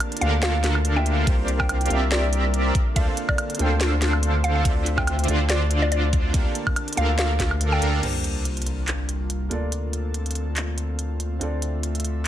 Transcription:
Already playing: analog synth pad D3 A#3 D4 F4 A5, felt piano A#3 D4 F4 G4 D5
0.00 closed hi-hat, high woodblock
0.12 closed hi-hat
0.17 felt piano A#3 D4, closed hi-hat
0.21 sub bass D2, supersaw synth D3 D4 A4 A#4 F5, felt piano F4 G4 F5, synth pluck F5, closed hi-hat
0.43 synth pluck F5, snare, closed hi-hat
0.64 snare, closed hi-hat
0.75 high woodblock
0.85 closed hi-hat
0.95 felt piano A#3 D4 F4 G4 E5, synth pluck G5
1.06 closed hi-hat
1.25 sub bass C2, analog synth pad C3 G3 A#3, felt piano A#3 D4 F4 G4, supersaw synth C4 G4 A#4 D5 F5, kick, closed hi-hat, ride
1.29 felt piano C5
1.48 closed hi-hat
1.60 synth pluck G5, kick, high woodblock
1.69 closed hi-hat, high woodblock
1.81 closed hi-hat
1.86 felt piano A#3 D4, closed hi-hat
1.90 sub bass C2, supersaw synth C4 G4 A#4 D5 E5, felt piano F4 G4 E5, closed hi-hat
2.12 synth pluck D5, snare, closed hi-hat
2.33 closed hi-hat
2.54 closed hi-hat
2.75 analog synth pad D3 C4 A4, kick, closed hi-hat
2.94 sub bass D2, supersaw synth D3 D4 A4 C5 F5, felt piano A#3 D4 F4 A4 D5, synth pluck F5, kick, closed hi-hat, ride
3.17 closed hi-hat
3.29 synth pluck D5, kick, high woodblock
3.38 closed hi-hat, high woodblock
3.50 closed hi-hat
3.55 felt piano A#3 D4, closed hi-hat
3.59 sub bass D2, supersaw synth D3 D4 A4 C5 F5, felt piano F4 A4 G5, closed hi-hat
3.81 snare, closed hi-hat
4.02 snare, closed hi-hat
4.13 high woodblock
4.23 closed hi-hat
4.44 synth pluck F5, closed hi-hat
4.55 synth pluck F5
4.63 sub bass D2, supersaw synth D3 D4 F4 C5 E5, analog synth pad A3, felt piano C4 D4 F4 A4 D5, kick, closed hi-hat, ride
4.86 closed hi-hat
4.98 synth pluck G5, kick, high woodblock
5.07 closed hi-hat, high woodblock
5.19 closed hi-hat
5.24 felt piano C4 D4, closed hi-hat
5.28 sub bass D2, supersaw synth D3 D4 F4 C5 D5, felt piano F4 A4 F5, closed hi-hat
5.50 synth pluck D5, snare, closed hi-hat
5.71 closed hi-hat
5.82 synth pluck D5
5.92 synth pluck D5, closed hi-hat
6.13 kick, closed hi-hat
6.32 sub bass D2, supersaw synth D3 D4 A4 A#4 F5, felt piano A#3 D4 F4 G4 D5, analog synth pad A#3 D4 A5, kick, closed hi-hat, ride
6.55 closed hi-hat
6.67 kick, high woodblock
6.76 closed hi-hat, high woodblock
6.88 closed hi-hat
6.93 felt piano A#3 D4, closed hi-hat
6.97 sub bass D2, supersaw synth D3 D4 A4 A#4 F5, felt piano F4 G4 F5, synth pluck F5, closed hi-hat
7.19 synth pluck F5, snare, closed hi-hat
7.40 kick, snare, closed hi-hat
7.51 high woodblock
7.61 closed hi-hat
7.72 synth pluck G5
7.82 sub bass D2, supersaw synth D3 D4 A4 A#4 F5, closed hi-hat
8.01 sub bass C2, analog synth pad C3 G3 A#3 D4 F4, felt piano A#3 D4 F4 G4 C5, closed hi-hat, crash, sub drop
8.24 closed hi-hat
8.45 closed hi-hat
8.57 closed hi-hat
8.62 closed hi-hat
8.67 closed hi-hat
8.88 clap, closed hi-hat
9.09 closed hi-hat
9.30 closed hi-hat
9.49 sub bass D2, analog synth pad D3 C4 A4, felt piano A#3 D4 F4 A4 D5, closed hi-hat
9.72 closed hi-hat
9.93 closed hi-hat
10.14 closed hi-hat
10.26 closed hi-hat
10.31 closed hi-hat
10.35 closed hi-hat
10.57 clap, closed hi-hat
10.78 closed hi-hat
10.99 closed hi-hat
11.20 closed hi-hat
11.39 sub bass D2, analog synth pad A3 E5, felt piano C4 D4 F4 A4 D5, closed hi-hat
11.62 closed hi-hat
11.83 closed hi-hat
11.95 closed hi-hat
12.00 closed hi-hat
12.05 closed hi-hat

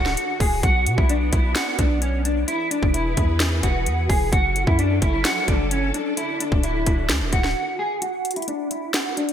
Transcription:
Already playing: 808-style bass D1, string section D3 D4 F#4 A4, clean electric guitar F#4
0.06 snare
0.17 closed hi-hat
0.40 808-style bass D1, clean electric guitar G#4, kick, open hi-hat
0.63 808-style bass B1, string section B3 D4, clean electric guitar F#4, kick, closed hi-hat
0.86 808-style bass B2, closed hi-hat
0.98 808-style bass B1, clean electric guitar E4, kick
1.09 clean electric guitar D4, closed hi-hat
1.33 808-style bass B1, clean electric guitar E4, kick, closed hi-hat
1.55 clean electric guitar F#4, snare, closed hi-hat
1.78 808-style bass B1, clean electric guitar D4, kick, closed hi-hat
2.02 clean electric guitar C#4, closed hi-hat
2.25 clean electric guitar D4, closed hi-hat
2.48 string section E3 E4 G#4 B4, clean electric guitar E4, closed hi-hat
2.71 clean electric guitar D4, closed hi-hat
2.83 808-style bass E1, kick
2.94 clean electric guitar E4, closed hi-hat
3.17 808-style bass E2, kick, closed hi-hat
3.40 snare, closed hi-hat
3.63 808-style bass E1, clean electric guitar F#4, kick, closed hi-hat
3.86 808-style bass E2, closed hi-hat
4.09 808-style bass E1, clean electric guitar G#4, kick, open hi-hat
4.32 808-style bass F#1, string section F#3 C#4 E4 A4, clean electric guitar F#4, kick, closed hi-hat
4.56 closed hi-hat
4.67 808-style bass F#2, clean electric guitar E4, kick
4.79 clean electric guitar D4, closed hi-hat
5.02 808-style bass F#1, clean electric guitar E4, kick, closed hi-hat
5.25 clean electric guitar F#4, snare, closed hi-hat
5.48 808-style bass F#1, clean electric guitar D4, kick, closed hi-hat
5.71 clean electric guitar C#4, closed hi-hat
5.94 clean electric guitar D4, closed hi-hat
6.17 string section D3 D4 F#4, clean electric guitar E4, closed hi-hat
6.40 clean electric guitar D4, closed hi-hat
6.52 808-style bass D1, kick
6.63 clean electric guitar E4, closed hi-hat
6.86 808-style bass D1, kick, closed hi-hat
7.09 808-style bass D2, snare, closed hi-hat
7.21 808-style bass D1
7.33 808-style bass D1, clean electric guitar F#4, kick, closed hi-hat
7.44 snare
7.79 clean electric guitar G#4
8.02 clean electric guitar F#4, closed hi-hat
8.25 closed hi-hat
8.31 closed hi-hat
8.36 clean electric guitar E4, closed hi-hat
8.42 closed hi-hat
8.48 clean electric guitar D4, closed hi-hat
8.71 clean electric guitar E4, closed hi-hat
8.94 clean electric guitar F#4, snare, closed hi-hat
9.17 clean electric guitar D4, closed hi-hat
9.29 closed hi-hat

